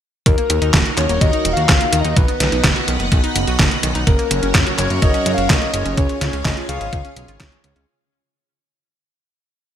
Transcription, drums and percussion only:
0.26 kick loud
0.26 closed hi-hat medium
0.38 closed hi-hat soft
0.50 closed hi-hat loud
0.62 closed hi-hat soft
0.74 kick loud
0.74 snare loud
0.74 clap loud
0.74 closed hi-hat medium
0.86 closed hi-hat soft
0.97 clap medium
0.97 closed hi-hat medium
1.09 closed hi-hat soft
1.21 kick loud
1.21 closed hi-hat medium
1.33 closed hi-hat soft
1.45 closed hi-hat loud
1.57 closed hi-hat soft
1.69 kick loud
1.69 snare loud
1.69 clap medium
1.69 closed hi-hat medium
1.81 closed hi-hat soft
1.93 closed hi-hat loud
2.05 closed hi-hat soft
2.16 kick loud
2.16 closed hi-hat medium
2.28 closed hi-hat soft
2.40 snare medium
2.40 closed hi-hat loud
2.52 closed hi-hat soft
2.64 kick loud
2.64 snare loud
2.64 clap loud
2.64 closed hi-hat medium
2.76 closed hi-hat soft
2.88 closed hi-hat medium
3.00 closed hi-hat soft
3.12 kick loud
3.12 closed hi-hat medium
3.24 closed hi-hat soft
3.36 closed hi-hat loud
3.47 closed hi-hat soft
3.59 kick loud
3.59 snare loud
3.59 clap medium
3.59 closed hi-hat medium
3.71 closed hi-hat soft
3.83 closed hi-hat loud
3.95 closed hi-hat soft
4.07 kick loud
4.07 closed hi-hat medium
4.19 closed hi-hat soft
4.31 closed hi-hat loud
4.43 closed hi-hat soft
4.55 kick loud
4.55 snare loud
4.55 clap medium
4.55 closed hi-hat medium
4.67 closed hi-hat soft
4.78 clap medium
4.78 closed hi-hat medium
4.90 closed hi-hat soft
5.02 kick loud
5.02 closed hi-hat medium
5.14 closed hi-hat soft
5.26 closed hi-hat medium
5.38 closed hi-hat soft
5.50 kick loud
5.50 snare loud
5.50 clap medium
5.50 closed hi-hat medium
5.62 closed hi-hat soft
5.74 closed hi-hat medium
5.86 closed hi-hat soft
5.97 kick loud
5.97 closed hi-hat medium
6.09 closed hi-hat soft
6.21 snare medium
6.21 closed hi-hat medium
6.33 closed hi-hat soft
6.45 kick loud
6.45 snare loud
6.45 clap medium
6.45 closed hi-hat medium
6.57 closed hi-hat soft
6.69 closed hi-hat medium
6.81 closed hi-hat soft
6.93 kick loud
6.93 closed hi-hat medium
7.05 closed hi-hat soft
7.16 closed hi-hat medium
7.28 closed hi-hat soft
7.40 kick loud
7.40 snare loud
7.40 clap medium
7.40 closed hi-hat medium
7.52 closed hi-hat soft
7.64 closed hi-hat medium
7.76 closed hi-hat soft

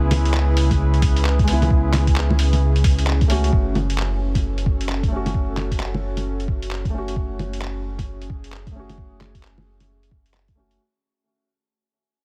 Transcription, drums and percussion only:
0.11 open hi-hat medium
0.11 low bongo medium
0.25 closed hi-hat medium
0.34 clap loud
0.57 open hi-hat medium
0.71 kick medium
0.71 closed hi-hat medium
0.71 low bongo soft
0.94 closed hi-hat soft
1.02 kick loud
1.02 open hi-hat medium
1.16 closed hi-hat medium
1.25 clap loud
1.39 kick loud
1.39 closed hi-hat soft
1.48 open hi-hat medium
1.62 closed hi-hat medium
1.62 low bongo medium
1.70 kick loud
1.93 clap medium
1.93 open hi-hat medium
1.93 low bongo medium
2.07 kick medium
2.07 closed hi-hat medium
2.16 clap loud
2.31 low bongo medium
2.39 open hi-hat medium
2.53 closed hi-hat medium
2.53 low bongo soft
2.76 closed hi-hat soft
2.84 kick loud
2.84 open hi-hat medium
2.98 closed hi-hat medium
3.07 clap loud
3.21 kick loud
3.21 closed hi-hat soft
3.30 open hi-hat medium
3.44 closed hi-hat medium
3.53 kick loud
3.75 closed hi-hat soft
3.75 low bongo medium
3.90 closed hi-hat medium
3.98 clap loud
4.35 kick medium
4.35 closed hi-hat medium
4.35 low bongo soft
4.58 closed hi-hat soft
4.66 kick loud
4.81 closed hi-hat medium
4.89 clap loud
5.03 kick loud
5.03 closed hi-hat soft
5.26 closed hi-hat medium
5.26 low bongo medium
5.34 kick loud
5.57 clap medium
5.57 closed hi-hat soft
5.57 low bongo medium
5.71 kick medium
5.71 closed hi-hat medium
5.80 clap loud
5.94 low bongo medium
6.17 closed hi-hat medium
6.17 low bongo soft
6.40 closed hi-hat soft
6.48 kick loud
6.62 closed hi-hat medium
6.71 clap loud
6.85 kick loud
6.85 closed hi-hat soft
7.08 closed hi-hat medium
7.16 kick loud
7.39 closed hi-hat soft
7.39 low bongo medium
7.53 closed hi-hat medium
7.62 clap loud
7.99 kick medium
7.99 closed hi-hat medium
7.99 low bongo soft
8.22 closed hi-hat soft
8.30 kick loud
8.44 closed hi-hat medium
8.52 clap loud
8.67 kick loud
8.67 closed hi-hat soft
8.89 closed hi-hat medium
8.89 low bongo medium
8.98 kick loud
9.21 clap medium
9.21 closed hi-hat soft
9.21 low bongo medium
9.35 kick medium
9.35 closed hi-hat soft
9.43 clap loud
9.58 low bongo medium
9.80 closed hi-hat medium
9.80 low bongo soft
10.03 closed hi-hat soft
10.11 kick loud
10.26 closed hi-hat soft
10.34 clap loud
10.48 kick medium
10.48 closed hi-hat soft
10.71 closed hi-hat medium

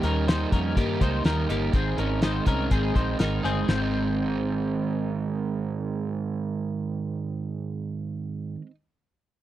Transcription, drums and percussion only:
0.03 closed hi-hat medium
0.28 snare loud
0.28 closed hi-hat medium
0.52 kick medium
0.52 closed hi-hat medium
0.77 kick medium
0.77 closed hi-hat medium
1.01 kick medium
1.01 closed hi-hat medium
1.25 snare medium
1.25 closed hi-hat medium
1.50 closed hi-hat medium
1.73 kick loud
1.73 closed hi-hat medium
1.98 closed hi-hat medium
2.22 snare medium
2.22 closed hi-hat medium
2.46 kick medium
2.46 closed hi-hat medium
2.71 kick medium
2.71 closed hi-hat medium
2.96 kick medium
2.96 closed hi-hat medium
3.19 snare medium
3.19 closed hi-hat medium
3.45 closed hi-hat medium
3.68 snare medium
3.68 china medium

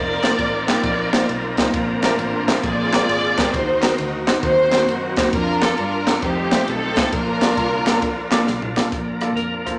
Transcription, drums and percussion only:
0.23 snare loud
0.23 clap medium
0.23 ride medium
0.39 kick medium
0.39 ride medium
0.68 snare medium
0.68 clap loud
0.68 ride medium
0.84 kick loud
0.84 ride medium
1.13 snare loud
1.13 clap medium
1.13 ride medium
1.29 ride medium
1.57 kick medium
1.57 snare loud
1.57 clap medium
1.57 ride medium
1.74 kick loud
1.74 ride medium
2.02 snare loud
2.02 clap loud
2.02 ride medium
2.19 ride medium
2.48 snare loud
2.48 clap loud
2.48 ride medium
2.63 kick loud
2.63 ride medium
2.93 snare loud
2.93 clap loud
2.93 ride medium
3.09 ride medium
3.37 kick loud
3.37 snare loud
3.37 clap loud
3.37 ride medium
3.54 kick loud
3.54 ride medium
3.82 snare loud
3.82 clap medium
3.82 ride medium
3.98 ride medium
4.28 snare loud
4.28 clap medium
4.28 ride medium
4.43 kick loud
4.43 ride medium
4.72 snare loud
4.72 clap medium
4.72 ride medium
4.88 ride medium
5.16 kick loud
5.16 snare loud
5.16 clap loud
5.16 ride medium
5.33 kick loud
5.33 ride medium
5.61 snare loud
5.61 clap medium
5.61 ride medium
5.77 ride medium
6.07 snare loud
6.07 clap loud
6.07 ride medium
6.22 kick medium
6.22 ride medium
6.52 snare loud
6.52 clap medium
6.52 ride medium
6.68 ride medium
6.96 kick loud
6.96 snare loud
6.96 clap medium
6.96 ride medium
7.13 kick loud
7.13 ride medium
7.41 snare loud
7.41 clap medium
7.41 ride medium
7.57 kick medium
7.57 ride medium
7.87 snare loud
7.87 clap loud
7.87 ride medium
8.02 kick loud
8.02 ride medium
8.31 snare loud
8.31 clap medium
8.31 ride medium
8.47 snare medium
8.62 mid tom medium
8.77 snare loud
8.77 clap medium
8.92 kick loud
8.92 closed hi-hat medium
9.21 cross-stick loud
9.21 closed hi-hat medium
9.37 closed hi-hat medium
9.66 kick medium
9.66 cross-stick medium
9.66 closed hi-hat medium

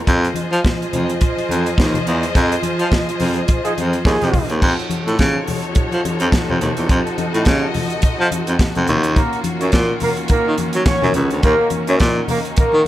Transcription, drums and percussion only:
0.07 kick loud
0.07 closed hi-hat medium
0.07 muted conga soft
0.24 closed hi-hat soft
0.34 closed hi-hat medium
0.34 high conga medium
0.53 closed hi-hat soft
0.65 kick loud
0.65 snare loud
0.65 muted conga soft
0.65 high conga medium
0.80 closed hi-hat soft
0.80 muted conga soft
0.93 closed hi-hat medium
0.93 high conga medium
0.93 low conga medium
1.09 closed hi-hat soft
1.21 kick loud
1.21 closed hi-hat medium
1.21 muted conga soft
1.37 closed hi-hat soft
1.37 muted conga soft
1.49 closed hi-hat medium
1.49 high conga medium
1.66 closed hi-hat soft
1.78 kick loud
1.78 snare loud
1.78 high conga medium
1.94 closed hi-hat soft
1.94 muted conga soft
1.94 high conga medium
1.94 low conga medium
2.07 closed hi-hat medium
2.23 closed hi-hat medium
2.35 kick loud
2.35 closed hi-hat medium
2.35 muted conga soft
2.52 closed hi-hat soft
2.63 closed hi-hat medium
2.63 high conga medium
2.79 closed hi-hat soft
2.92 kick loud
2.92 snare loud
2.92 high conga medium
3.09 closed hi-hat soft
3.09 muted conga soft
3.20 open hi-hat medium
3.20 high conga medium
3.20 low conga medium
3.36 closed hi-hat soft
3.48 kick loud
3.48 closed hi-hat medium
3.48 muted conga soft
3.65 closed hi-hat soft
3.78 closed hi-hat medium
3.78 high conga medium
3.93 closed hi-hat soft
4.05 kick loud
4.05 snare loud
4.05 muted conga soft
4.05 high conga medium
4.21 snare soft
4.21 closed hi-hat soft
4.21 high conga medium
4.21 low conga medium
4.34 kick medium
4.34 open hi-hat medium
4.34 low conga medium
4.50 closed hi-hat medium
4.62 kick loud
4.62 crash medium
4.62 muted conga soft
4.79 closed hi-hat soft
4.90 closed hi-hat medium
4.90 high conga medium
5.08 closed hi-hat soft
5.19 kick loud
5.19 snare loud
5.19 closed hi-hat medium
5.19 high conga medium
5.35 muted conga soft
5.47 open hi-hat medium
5.47 high conga medium
5.47 low conga medium
5.63 closed hi-hat soft
5.75 kick loud
5.75 closed hi-hat medium
5.91 closed hi-hat soft
5.91 muted conga soft
6.05 closed hi-hat medium
6.05 high conga medium
6.20 closed hi-hat medium
6.32 kick loud
6.32 snare loud
6.32 closed hi-hat medium
6.32 muted conga soft
6.32 high conga medium
6.50 high conga medium
6.50 low conga medium
6.61 closed hi-hat medium
6.61 low conga medium
6.77 closed hi-hat medium
6.89 kick loud
6.89 closed hi-hat medium
7.07 closed hi-hat soft
7.18 closed hi-hat medium
7.18 high conga medium
7.34 closed hi-hat soft
7.45 kick loud
7.45 snare loud
7.45 closed hi-hat medium
7.45 high conga medium
7.63 muted conga soft
7.74 open hi-hat medium
7.74 high conga medium
7.74 low conga medium
7.90 closed hi-hat soft
8.02 kick loud
8.02 closed hi-hat medium
8.31 closed hi-hat medium
8.31 high conga medium
8.47 closed hi-hat medium
8.59 kick loud
8.59 snare loud
8.59 closed hi-hat medium
8.59 high conga medium
8.75 closed hi-hat soft
8.75 high conga medium
8.75 low conga medium
8.87 closed hi-hat medium
8.87 low conga medium
9.03 closed hi-hat soft
9.16 kick loud
9.16 closed hi-hat medium
9.16 muted conga soft
9.33 closed hi-hat soft
9.44 closed hi-hat medium
9.44 high conga medium
9.61 closed hi-hat soft
9.72 kick loud
9.72 snare loud
9.72 closed hi-hat medium
9.72 muted conga soft
9.72 high conga medium
9.89 muted conga soft
10.00 open hi-hat medium
10.00 high conga medium
10.00 low conga medium
10.17 closed hi-hat soft
10.28 kick loud
10.28 closed hi-hat medium
10.58 closed hi-hat medium
10.58 high conga medium
10.73 closed hi-hat medium
10.86 kick loud
10.86 snare loud
10.86 closed hi-hat medium
10.86 high conga medium
11.02 snare soft
11.02 muted conga soft
11.02 high conga medium
11.02 low conga medium
11.14 closed hi-hat medium
11.14 low conga medium
11.31 closed hi-hat medium
11.43 kick loud
11.43 closed hi-hat medium
11.43 muted conga soft
11.70 closed hi-hat medium
11.70 high conga medium
11.87 closed hi-hat soft
12.00 kick loud
12.00 snare loud
12.00 closed hi-hat medium
12.00 muted conga soft
12.00 high conga medium
12.16 muted conga soft
12.28 open hi-hat medium
12.28 high conga medium
12.28 low conga medium
12.45 closed hi-hat soft
12.57 kick loud
12.57 closed hi-hat medium
12.57 muted conga soft
12.72 muted conga soft

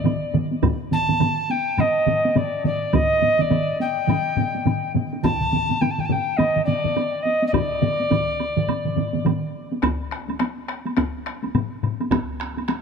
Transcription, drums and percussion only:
0.05 taiko low-mid medium
0.05 taiko mid medium
0.05 taiko high medium
0.05 high woodblock soft
0.34 taiko low-mid medium
0.34 taiko mid medium
0.34 taiko high soft
0.51 taiko high soft
0.62 taiko medium
0.62 taiko low-mid medium
0.62 taiko mid medium
0.62 taiko high medium
0.62 high woodblock medium
0.91 taiko low-mid medium
0.91 taiko mid medium
0.91 taiko high medium
1.09 taiko low-mid medium
1.09 taiko mid medium
1.09 taiko high medium
1.20 taiko low-mid medium
1.20 taiko mid medium
1.20 taiko high medium
1.20 high woodblock soft
1.50 taiko high medium
1.78 taiko low-mid medium
1.78 taiko mid medium
1.78 taiko high medium
1.78 high woodblock soft
2.06 taiko low-mid medium
2.06 taiko mid medium
2.06 taiko high medium
2.25 taiko high medium
2.36 taiko low-mid medium
2.36 taiko mid medium
2.36 taiko high medium
2.36 high woodblock soft
2.64 taiko low-mid medium
2.64 taiko mid medium
2.64 taiko high medium
2.93 taiko medium
2.93 taiko low-mid medium
2.93 taiko mid medium
2.93 taiko high medium
2.93 high woodblock medium
3.22 taiko low-mid medium
3.22 taiko mid medium
3.22 taiko high soft
3.39 taiko low-mid medium
3.39 taiko mid medium
3.39 taiko high medium
3.51 taiko low-mid medium
3.51 taiko mid medium
3.51 taiko high medium
3.51 high woodblock soft
3.80 taiko high soft
4.08 taiko low-mid medium
4.08 taiko mid medium
4.08 taiko high medium
4.08 high woodblock soft
4.37 taiko low-mid loud
4.37 taiko mid medium
4.37 taiko high medium
4.55 taiko high soft
4.66 taiko low-mid medium
4.66 taiko mid medium
4.66 taiko high medium
4.66 high woodblock soft
4.95 taiko low-mid medium
4.95 taiko mid medium
4.95 taiko high medium
5.13 taiko high soft
5.24 taiko medium
5.24 taiko low-mid medium
5.24 taiko mid medium
5.24 taiko high medium
5.24 high woodblock medium
5.41 taiko low-mid medium
5.41 taiko mid medium
5.52 taiko low-mid medium
5.52 taiko mid medium
5.52 taiko high soft
5.69 taiko low-mid medium
5.69 taiko mid medium
5.69 taiko high soft
5.81 taiko low-mid medium
5.81 taiko mid medium
5.81 taiko high medium
5.81 high woodblock soft
5.98 taiko low-mid medium
5.98 taiko mid medium
6.09 taiko low-mid medium
6.09 taiko mid medium
6.09 taiko high soft
6.39 taiko low-mid medium
6.39 taiko mid medium
6.39 taiko high medium
6.39 high woodblock soft
6.56 taiko low-mid medium
6.56 taiko mid medium
6.67 taiko low-mid medium
6.67 taiko mid medium
6.67 taiko high soft
6.84 taiko low-mid medium
6.84 taiko mid medium
6.84 taiko high soft
6.96 taiko high medium
6.96 high woodblock soft
7.25 taiko high soft
7.42 taiko high soft
7.53 taiko loud
7.53 taiko low-mid medium
7.53 taiko mid medium
7.53 taiko high medium
7.53 high woodblock medium
7.82 taiko low-mid medium
7.82 taiko mid medium
7.82 taiko high soft
8.00 taiko high soft
8.11 taiko medium
8.11 taiko low-mid medium
8.11 taiko mid medium
8.11 taiko high medium
8.11 high woodblock soft
8.40 taiko high soft
8.40 high woodblock soft
8.57 taiko low-mid medium
8.57 taiko mid medium
8.68 taiko low-mid medium
8.68 taiko mid medium
8.68 taiko high medium
8.68 high woodblock medium
8.85 taiko low-mid medium
8.85 taiko mid medium
8.96 taiko low-mid medium
8.96 taiko mid medium
8.96 taiko high soft
9.14 taiko low-mid medium
9.14 taiko mid medium
9.14 taiko high soft
9.25 taiko low-mid medium
9.25 taiko mid medium
9.25 taiko high medium
9.25 high woodblock soft
9.72 taiko high soft
9.83 taiko rim medium
9.83 taiko medium
9.83 taiko high medium
9.83 high woodblock medium
10.11 taiko rim medium
10.11 high woodblock soft
10.29 taiko high medium
10.29 high woodblock soft
10.40 taiko rim medium
10.40 taiko high medium
10.40 high woodblock soft
10.69 taiko rim medium
10.69 high woodblock soft
10.86 taiko high medium
10.86 high woodblock soft
10.97 taiko rim medium
10.97 taiko medium
10.97 taiko high medium
10.97 high woodblock soft
11.26 taiko rim medium
11.26 high woodblock soft
11.43 taiko high medium
11.43 high woodblock soft
11.55 taiko low-mid loud
11.55 taiko high medium
11.55 high woodblock soft
11.83 taiko low-mid medium
11.83 high woodblock soft
12.00 taiko high medium
12.00 high woodblock soft
12.11 taiko rim medium
12.11 taiko medium
12.11 taiko high medium
12.11 high woodblock medium
12.40 taiko rim medium
12.40 high woodblock soft
12.57 taiko high soft
12.57 high woodblock soft
12.68 taiko rim medium
12.68 taiko high medium
12.68 high woodblock medium

